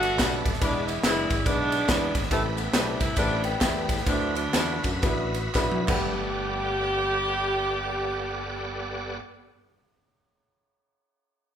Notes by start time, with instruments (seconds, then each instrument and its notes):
Already playing: fingered electric bass G1, saxophone section A3 B3 F#4, tonewheel organ A4 D5 F#5 B5
0.03 ride, tambourine
0.18 fingered electric bass B1, upright piano G3 B3 D4 F#4 B4, kick, snare, clap, ride, tambourine
0.46 fingered electric bass D#1, kick, ride, tambourine
0.53 snare
0.61 fingered electric bass E1, upright piano E3 G#3 B3 D4 E4 B4, saxophone section G#3 B3 D4, tonewheel organ G#4 D5 E5, kick, ride, tambourine
0.88 saxophone section E4, ride, tambourine
1.03 fingered electric bass F#1, upright piano G#3 B3 D4 E4 B4, saxophone section G#3 B3 E4, snare, clap, ride, tambourine
1.30 fingered electric bass G#1, kick, ride, tambourine
1.46 fingered electric bass B1, upright piano G#3 B3 D4 E4 B4, saxophone section G#3 B3 D4, kick, ride, tambourine
1.72 ride, tambourine
1.88 fingered electric bass E2, upright piano G#3 B3 D4 E4 B4, kick, snare, clap, ride, tambourine
2.14 fingered electric bass G#1, kick, snare, ride, tambourine
2.23 snare
2.31 fingered electric bass A1, upright piano A2 A3 C4 E4 G4 B4, saxophone section C3 E3 A3, tonewheel organ A4 B4 G5, kick, ride, tambourine
2.57 saxophone section B3, ride, tambourine
2.73 fingered electric bass B1, upright piano A3 C4 E4 G4 B4, saxophone section D4, snare, clap, ride, tambourine
3.00 fingered electric bass C2, saxophone section E4, kick, ride, tambourine
3.16 fingered electric bass A1, saxophone section G3 B3 D4, upright piano A3 C4 E4 G4 B4, kick, ride, tambourine
3.44 saxophone section E3 G3 C4, ride, tambourine
3.61 fingered electric bass E2, upright piano A3 C4 E4 G4 B4, kick, snare, clap, ride, tambourine
3.88 kick, snare, ride, tambourine
3.98 snare
4.06 fingered electric bass D2, upright piano D3 B3 D4 E4 F#4 C5, saxophone section F#3 A3 D4, tonewheel organ F#4 E5, kick, ride, tambourine
4.35 saxophone section F#3 A3 D4, ride, tambourine
4.53 fingered electric bass E2, upright piano B3 D4 E4 F#4 B4, snare, clap, ride, tambourine
4.84 fingered electric bass F#2, kick, ride, tambourine
5.02 fingered electric bass A1, upright piano B3 D4 E4 F#4 B4, kick, ride, tambourine
5.34 ride, tambourine
5.54 fingered electric bass B1, upright piano B3 D4 E4 F#4 B4, kick, snare, clap, tambourine
5.72 high tom
5.86 fingered electric bass G1, upright piano G2 A3 G4 B4 F#5, tonewheel organ B3 G4 A4 D5 F#5, saxophone section G4, kick, clap, crash